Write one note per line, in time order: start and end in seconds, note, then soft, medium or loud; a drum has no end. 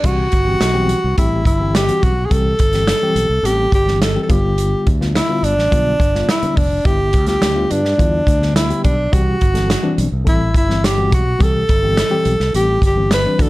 0.03 0.26 C2 medium
0.03 0.27 E3 medium
0.03 0.27 G3 medium
0.03 0.27 C4 medium
0.03 1.17 F#4 loud
0.03 0.27 G4 medium
0.03 kick loud
0.03 closed hi-hat medium
0.32 0.54 G1 medium
0.32 kick medium
0.32 closed hi-hat medium
0.45 0.61 E3 medium
0.45 0.61 G3 medium
0.45 0.62 C4 medium
0.45 0.62 G4 medium
0.61 0.93 B1 medium
0.61 snare loud
0.61 closed hi-hat loud
0.74 0.98 E3 medium
0.74 0.98 G3 medium
0.74 0.98 C4 medium
0.74 0.98 G4 medium
0.89 closed hi-hat medium
1.04 1.15 C2 medium
1.17 1.47 A1 medium
1.17 1.41 E3 medium
1.17 1.41 G3 medium
1.17 1.41 C4 medium
1.17 1.44 E4 medium
1.17 1.41 G4 medium
1.17 kick medium
1.17 closed hi-hat medium
1.45 1.89 G1 medium
1.45 1.77 E4 medium
1.45 kick medium
1.45 closed hi-hat medium
1.60 1.75 E3 medium
1.60 1.75 G3 medium
1.60 1.76 C4 medium
1.60 1.76 G4 medium
1.75 2.05 G4 medium
1.75 snare loud
1.75 closed hi-hat loud
1.89 2.12 E3 medium
1.89 2.12 G3 medium
1.89 2.12 C4 medium
1.89 2.12 F#4 medium
1.89 closed hi-hat soft
2.03 2.24 B1 medium
2.03 2.27 F#4 medium
2.03 kick medium
2.03 closed hi-hat medium
2.25 2.34 G#4 medium
2.29 2.53 C2 medium
2.29 2.53 E3 medium
2.29 2.54 G3 medium
2.29 2.54 C4 medium
2.29 2.54 G4 medium
2.29 3.47 A4 loud
2.29 kick loud
2.29 closed hi-hat medium
2.59 2.92 G1 medium
2.59 kick medium
2.59 closed hi-hat medium
2.73 2.89 E3 medium
2.73 2.89 G3 medium
2.73 2.89 C4 medium
2.73 2.89 G4 medium
2.73 snare soft
2.73 closed hi-hat medium
2.88 snare loud
2.88 closed hi-hat loud
3.02 3.25 E3 medium
3.02 3.26 G3 medium
3.02 3.26 C4 medium
3.02 3.26 G4 loud
3.15 3.26 B1 medium
3.15 closed hi-hat medium
3.30 3.41 C2 medium
3.43 3.65 A1 medium
3.43 3.67 E3 medium
3.43 3.67 G3 medium
3.43 3.67 C4 medium
3.43 3.73 G4 medium
3.43 3.67 A4 medium
3.43 closed hi-hat medium
3.72 4.16 G1 medium
3.72 4.00 G4 loud
3.72 kick medium
3.72 closed hi-hat medium
3.87 4.02 E3 medium
3.87 4.03 G3 medium
3.87 4.03 C4 medium
3.87 4.03 G4 medium
3.87 snare soft
4.02 4.22 A4 medium
4.02 snare loud
4.02 closed hi-hat medium
4.15 4.29 E3 medium
4.15 4.28 G3 medium
4.15 4.30 C4 medium
4.15 4.30 G4 medium
4.23 4.33 A4 medium
4.28 4.73 G1 medium
4.28 4.86 D3 medium
4.28 4.86 G3 medium
4.28 4.86 B3 medium
4.28 4.86 F4 medium
4.28 4.89 G4 medium
4.28 kick loud
4.28 closed hi-hat medium
4.58 closed hi-hat medium
4.87 5.19 D2 loud
4.87 kick medium
4.87 closed hi-hat medium
5.00 5.16 D3 medium
5.00 5.16 G3 medium
5.00 5.16 B3 medium
5.00 5.17 F4 medium
5.00 snare soft
5.15 5.46 E4 medium
5.15 snare loud
5.15 closed hi-hat medium
5.29 5.52 D3 medium
5.29 5.52 G3 medium
5.29 5.53 B3 medium
5.29 5.53 F4 medium
5.43 5.54 G1 medium
5.43 6.29 D4 medium
5.43 closed hi-hat medium
5.57 5.68 A1 medium
5.57 snare soft
5.71 5.94 B1 medium
5.71 5.95 D3 medium
5.71 5.95 G3 medium
5.71 5.95 B3 medium
5.71 5.95 F4 medium
5.71 kick medium
5.71 closed hi-hat medium
6.00 6.22 G1 medium
6.00 kick medium
6.00 closed hi-hat medium
6.14 6.30 D3 medium
6.14 6.30 G3 medium
6.14 6.30 B3 medium
6.14 6.30 F4 medium
6.14 snare soft
6.29 6.58 E4 medium
6.29 snare loud
6.29 closed hi-hat loud
6.42 6.66 D3 medium
6.42 6.66 G3 medium
6.42 6.66 B3 medium
6.42 6.67 D4 medium
6.42 muted fingered electric bass stroke soft
6.42 closed hi-hat soft
6.57 6.79 F1 medium
6.57 6.87 D4 medium
6.57 kick medium
6.57 open hi-hat medium
6.85 7.15 G1 loud
6.85 7.09 D3 medium
6.85 7.09 G3 medium
6.85 7.09 B3 medium
6.85 7.09 E4 medium
6.85 7.27 G4 loud
6.85 kick loud
6.85 closed hi-hat medium
7.13 7.36 D2 loud
7.13 kick medium
7.13 closed hi-hat medium
7.27 7.43 D3 medium
7.27 7.43 G3 medium
7.27 7.44 B3 medium
7.27 7.44 F4 medium
7.27 7.73 G4 loud
7.27 snare soft
7.27 closed hi-hat medium
7.42 7.64 D2 medium
7.42 snare loud
7.42 closed hi-hat loud
7.55 7.79 D3 medium
7.55 7.79 G3 medium
7.55 7.79 B3 medium
7.55 7.80 F4 medium
7.71 7.93 G2 medium
7.71 8.55 D4 medium
7.71 closed hi-hat medium
7.85 snare soft
7.98 8.21 E2 loud
7.98 8.22 D3 medium
7.98 8.22 G3 medium
7.98 8.22 B3 medium
7.98 8.22 F4 medium
7.98 kick medium
7.98 closed hi-hat medium
8.27 8.71 D2 medium
8.27 kick medium
8.27 closed hi-hat medium
8.39 8.56 D3 medium
8.39 8.56 G3 medium
8.39 8.57 B3 medium
8.39 8.57 D4 medium
8.39 snare soft
8.55 8.82 E4 medium
8.55 snare loud
8.55 closed hi-hat loud
8.69 8.93 D3 medium
8.69 8.93 G3 medium
8.69 8.94 B3 medium
8.69 8.94 G4 medium
8.69 closed hi-hat soft
8.84 9.06 B1 medium
8.84 9.14 D4 medium
8.84 kick medium
8.84 closed hi-hat medium
9.12 9.35 C2 loud
9.12 9.36 E3 medium
9.12 9.36 G3 medium
9.12 9.36 C4 medium
9.12 10.00 F#4 medium
9.12 9.36 G4 medium
9.12 kick loud
9.12 closed hi-hat medium
9.41 9.75 G1 loud
9.41 kick medium
9.41 closed hi-hat medium
9.54 9.70 E3 medium
9.54 9.71 G3 medium
9.54 9.71 C4 medium
9.54 9.71 A4 medium
9.54 snare soft
9.54 closed hi-hat medium
9.70 snare loud
9.70 closed hi-hat loud
9.83 10.07 E3 medium
9.83 10.07 G3 medium
9.83 10.07 C4 medium
9.83 10.07 D4 loud
9.98 10.09 B1 medium
9.98 closed hi-hat medium
10.12 10.23 C2 medium
10.24 10.54 A1 medium
10.24 10.49 E3 medium
10.24 10.49 G3 medium
10.24 10.49 C4 medium
10.24 10.49 A4 medium
10.24 kick medium
10.24 closed hi-hat medium
10.28 10.54 E4 medium
10.54 11.12 G1 medium
10.54 10.87 E4 medium
10.54 kick medium
10.54 closed hi-hat medium
10.69 10.85 E3 medium
10.69 10.85 G3 medium
10.69 10.85 C4 medium
10.69 10.85 E4 medium
10.69 snare soft
10.84 11.13 G4 medium
10.84 snare loud
10.84 closed hi-hat loud
10.97 11.21 E3 medium
10.97 11.21 G3 medium
10.97 11.21 C4 medium
10.97 11.22 F#4 medium
11.12 11.34 B1 medium
11.12 11.44 F#4 medium
11.12 kick medium
11.12 closed hi-hat medium
11.39 11.62 C2 loud
11.39 11.63 E3 medium
11.39 11.63 G3 medium
11.39 11.63 C4 medium
11.39 11.63 G4 medium
11.39 12.55 A4 loud
11.39 kick loud
11.39 closed hi-hat medium
11.69 12.02 G1 loud
11.69 kick medium
11.69 closed hi-hat medium
11.82 11.98 E3 medium
11.82 11.99 G3 medium
11.82 11.99 C4 medium
11.82 11.99 G4 medium
11.97 snare loud
11.97 closed hi-hat loud
12.11 12.34 E3 medium
12.11 12.34 G3 medium
12.11 12.35 C4 medium
12.11 12.35 G4 loud
12.25 12.37 B1 medium
12.25 closed hi-hat medium
12.40 12.51 C2 medium
12.40 snare soft
12.54 12.76 A1 medium
12.54 12.77 E3 medium
12.54 12.77 G3 medium
12.54 12.78 C4 medium
12.54 12.78 G4 medium
12.54 12.81 G4 medium
12.54 closed hi-hat medium
12.82 13.26 G1 medium
12.82 kick medium
12.82 closed hi-hat medium
12.86 13.11 G4 medium
12.96 13.12 E3 medium
12.96 13.12 G3 medium
12.96 13.13 C4 medium
12.96 13.13 G4 medium
13.11 13.43 B4 loud
13.11 snare loud
13.11 closed hi-hat loud
13.25 13.37 E3 medium
13.25 13.39 G3 medium
13.25 13.40 C4 medium
13.25 13.38 D4 medium
13.39 13.49 D2 loud
13.39 13.49 E3 medium
13.39 13.49 A3 medium
13.39 13.49 D4 medium
13.39 13.49 F#4 medium
13.39 13.49 A4 medium
13.39 kick loud
13.39 closed hi-hat medium